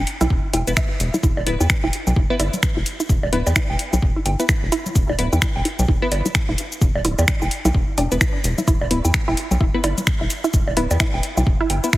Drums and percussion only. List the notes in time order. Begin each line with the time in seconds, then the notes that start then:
0.07 open hi-hat
0.21 open hi-hat, low conga, low woodblock, shaker
0.30 kick
0.53 open hi-hat, low woodblock, shaker
0.67 open hi-hat, shaker
0.77 finger snap, kick, shaker
1.00 open hi-hat, shaker
1.14 low conga, shaker
1.23 kick, shaker
1.37 high bongo
1.47 open hi-hat
1.60 low woodblock, shaker
1.70 finger snap, kick, shaker
1.84 low woodblock
1.93 open hi-hat
2.07 low conga, low woodblock, shaker
2.16 kick
2.40 open hi-hat, high bongo, shaker
2.53 open hi-hat, low conga, shaker
2.63 finger snap, kick, shaker
2.86 open hi-hat, shaker
3.00 shaker
3.09 kick, shaker
3.23 high bongo
3.33 open hi-hat
3.47 high bongo, low woodblock, shaker
3.56 finger snap, kick, shaker
3.70 low woodblock
3.79 open hi-hat
3.93 low conga, low woodblock, shaker
4.02 kick
4.26 open hi-hat, low woodblock, shaker
4.40 open hi-hat, shaker
4.49 finger snap, kick, shaker
4.72 open hi-hat, shaker
4.86 low conga, shaker
4.95 kick, shaker
5.09 high bongo
5.19 open hi-hat
5.33 low woodblock, shaker
5.42 finger snap, kick, shaker
5.56 low woodblock
5.65 open hi-hat
5.79 low conga, low woodblock, shaker
5.88 kick
6.12 open hi-hat, high bongo, shaker
6.26 open hi-hat, low conga, shaker
6.35 finger snap, kick, shaker
6.58 open hi-hat, shaker
6.72 shaker
6.81 kick, shaker
6.95 high bongo
7.05 open hi-hat, shaker
7.19 high bongo, low woodblock, shaker
7.28 finger snap, kick, shaker
7.42 low woodblock, shaker
7.51 open hi-hat
7.65 open hi-hat, low conga, low woodblock, shaker
7.74 kick
7.98 open hi-hat, low woodblock, shaker
8.12 open hi-hat, shaker
8.21 finger snap, kick, shaker
8.44 open hi-hat, shaker
8.58 low conga, shaker
8.68 kick, shaker
8.81 high bongo
8.91 open hi-hat
9.05 low woodblock, shaker
9.14 finger snap, kick, shaker
9.28 low woodblock
9.37 open hi-hat
9.51 low conga, low woodblock, shaker
9.61 kick
9.84 open hi-hat, high bongo, shaker
9.98 open hi-hat, low conga, shaker
10.07 finger snap, kick, shaker
10.30 open hi-hat, shaker
10.44 shaker
10.53 kick, shaker
10.67 high bongo
10.77 open hi-hat
10.91 high bongo, low woodblock, shaker
11.00 finger snap, kick, shaker
11.14 low woodblock
11.23 open hi-hat
11.37 low conga, low woodblock, shaker
11.47 kick
11.70 open hi-hat, low woodblock, shaker
11.84 open hi-hat, shaker
11.93 finger snap, kick, shaker